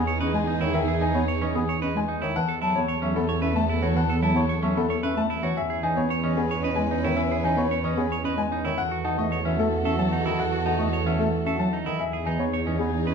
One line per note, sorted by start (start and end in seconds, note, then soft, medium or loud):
0.00 2.20 E2 medium
0.00 2.17 D#4 medium
0.00 0.11 G#4 medium
0.00 2.18 G#4 medium
0.00 0.11 D#6 medium
0.07 0.20 C#5 medium
0.21 0.31 C#4 medium
0.21 0.38 B4 medium
0.21 0.38 D#5 medium
0.33 0.44 G#3 medium
0.33 0.51 G#5 medium
0.47 0.65 D#4 medium
0.60 0.70 D#3 medium
0.60 0.78 E4 medium
0.60 0.78 C#5 medium
0.73 0.84 D#3 medium
0.73 0.92 E5 medium
0.73 0.92 G#5 medium
0.88 1.05 G#4 medium
1.00 1.10 E3 medium
1.00 1.18 D#4 medium
1.00 1.18 G#5 medium
1.00 1.19 G#5 medium
1.14 1.24 B3 medium
1.14 1.32 C#5 medium
1.14 1.32 C#6 medium
1.28 1.45 C#5 medium
1.41 1.51 E3 medium
1.41 1.59 C#4 medium
1.41 1.59 D#5 medium
1.41 1.59 C#6 medium
1.54 1.64 B3 medium
1.54 1.72 G#4 medium
1.54 1.72 D#6 medium
1.69 1.82 C#5 medium
1.82 1.92 C#4 medium
1.82 1.99 B4 medium
1.82 1.99 D#5 medium
1.95 2.05 G#3 medium
1.95 2.13 G#5 medium
2.08 2.26 D#4 medium
2.22 2.32 D#3 medium
2.22 2.39 E4 medium
2.22 2.39 C#5 medium
2.35 5.42 E2 medium
2.35 2.45 E3 medium
2.35 5.39 B3 medium
2.35 5.39 A4 medium
2.35 2.53 F#5 medium
2.35 2.53 A5 medium
2.48 2.61 A4 medium
2.62 2.72 F#3 medium
2.62 2.79 E4 medium
2.62 2.79 A5 medium
2.62 2.80 A5 medium
2.75 2.86 B3 medium
2.75 2.93 C#5 medium
2.75 2.93 C#6 medium
2.88 3.06 C#5 medium
3.02 3.12 F#3 medium
3.02 3.19 C#4 medium
3.02 3.20 E5 medium
3.02 3.20 C#6 medium
3.15 3.25 B3 medium
3.15 3.33 A4 medium
3.29 3.42 C#5 medium
3.41 3.52 C#4 medium
3.41 3.59 B4 medium
3.41 3.60 E5 medium
3.55 3.65 A3 medium
3.55 3.73 A5 medium
3.69 3.86 E4 medium
3.81 3.91 E3 medium
3.81 4.00 F#4 medium
3.81 4.00 C#5 medium
3.94 4.05 E3 medium
3.94 4.13 F#5 medium
3.94 4.13 A5 medium
4.10 4.22 A4 medium
4.22 4.32 F#3 medium
4.22 4.40 E4 medium
4.22 4.40 A5 medium
4.34 4.45 B3 medium
4.34 4.53 C#5 medium
4.34 4.53 C#6 medium
4.49 4.67 C#5 medium
4.62 4.72 F#3 medium
4.62 4.80 C#4 medium
4.62 4.80 E5 medium
4.62 4.80 C#6 medium
4.76 4.86 B3 medium
4.76 4.94 A4 medium
4.90 5.03 C#5 medium
5.03 5.13 C#4 medium
5.03 5.20 B4 medium
5.03 5.20 E5 medium
5.16 5.26 A3 medium
5.16 5.34 A5 medium
5.30 5.47 E4 medium
5.43 5.53 E3 medium
5.43 5.60 F#4 medium
5.43 5.61 C#5 medium
5.56 8.63 E2 medium
5.56 8.61 C#4 medium
5.56 8.60 B4 medium
5.56 5.74 E5 medium
5.56 5.74 G#5 medium
5.70 5.87 G#4 medium
5.83 5.93 E3 medium
5.83 6.01 D#4 medium
5.83 6.00 G#5 medium
5.83 6.01 G#5 medium
5.97 6.07 B3 medium
5.97 6.14 C#5 medium
5.97 6.14 C#6 medium
6.10 6.27 C#5 medium
6.23 6.33 E3 medium
6.23 6.41 C#4 medium
6.23 6.41 D#5 medium
6.23 6.41 C#6 medium
6.37 6.47 B3 medium
6.37 6.54 G#4 medium
6.51 6.64 C#5 medium
6.63 6.74 C#4 medium
6.63 6.81 B4 medium
6.63 6.81 D#5 medium
6.76 6.87 G#3 medium
6.76 6.94 G#5 medium
6.91 7.08 D#4 medium
7.03 7.14 D#3 medium
7.03 7.21 E4 medium
7.03 7.21 C#5 medium
7.16 7.34 E5 medium
7.16 7.35 G#5 medium
7.31 7.48 G#4 medium
7.43 7.53 E3 medium
7.43 7.62 D#4 medium
7.43 7.61 G#5 medium
7.57 7.67 B3 medium
7.57 7.75 C#5 medium
7.57 7.75 C#6 medium
7.71 7.88 C#5 medium
7.84 7.94 E3 medium
7.84 8.02 C#4 medium
7.84 8.01 D#5 medium
7.84 8.01 C#6 medium
7.96 8.07 B3 medium
7.96 8.15 G#4 medium
8.12 8.25 C#5 medium
8.24 8.34 C#4 medium
8.24 8.42 B4 medium
8.24 8.42 D#5 medium
8.37 8.47 G#3 medium
8.37 8.55 G#5 medium
8.52 8.69 D#4 medium
8.64 8.74 D#3 medium
8.64 8.82 E4 medium
8.64 8.82 C#5 medium
8.78 11.85 E2 medium
8.78 11.82 F#4 medium
8.78 11.82 A4 medium
8.78 8.95 F#5 medium
8.92 9.09 F#4 medium
9.04 9.15 E3 medium
9.04 9.22 D#4 medium
9.04 9.22 F#5 medium
9.04 9.22 A5 medium
9.18 9.28 A3 medium
9.18 9.36 D#5 medium
9.18 9.35 C#6 medium
9.32 9.49 C#5 medium
9.45 9.55 E3 medium
9.45 9.62 C#4 medium
9.45 9.62 E5 medium
9.58 9.68 A3 medium
9.58 9.76 A4 medium
9.85 9.95 C#4 medium
9.85 10.02 A4 medium
9.85 10.02 E5 medium
9.98 10.08 F#3 medium
9.98 10.16 A5 medium
10.12 10.29 D#4 medium
10.25 10.35 D#3 medium
10.25 10.43 E4 medium
10.25 10.43 D#5 medium
10.39 10.56 F#5 medium
10.53 10.65 F#4 medium
10.66 10.75 E3 medium
10.66 10.83 D#4 medium
10.66 10.83 F#5 medium
10.66 10.83 A5 medium
10.78 10.88 A3 medium
10.78 10.97 D#5 medium
10.78 10.96 C#6 medium
10.93 11.10 C#5 medium
11.06 11.16 E3 medium
11.06 11.23 C#4 medium
11.06 11.23 E5 medium
11.18 11.29 A3 medium
11.18 11.37 A4 medium
11.45 11.55 C#4 medium
11.45 11.63 A4 medium
11.45 11.63 E5 medium
11.59 11.69 F#3 medium
11.59 11.77 A5 medium
11.73 11.90 D#4 medium
11.86 11.96 D#3 medium
11.86 12.03 E4 medium
11.86 12.03 D#5 medium
11.99 13.14 E2 medium
11.99 13.14 D#4 medium
11.99 13.14 G#4 medium
11.99 12.17 E5 medium
11.99 12.17 G#5 medium
12.13 12.30 G#4 medium
12.25 12.36 E3 medium
12.25 12.44 D#4 medium
12.25 12.43 G#5 medium
12.39 12.49 B3 medium
12.39 12.57 C#5 medium
12.39 12.57 C#6 medium
12.53 12.70 C#5 medium
12.66 12.76 E3 medium
12.66 12.84 C#4 medium
12.66 12.83 D#5 medium
12.79 12.90 B3 medium
12.79 12.97 G#4 medium
13.05 13.14 C#4 medium
13.05 13.14 B4 medium
13.05 13.14 D#5 medium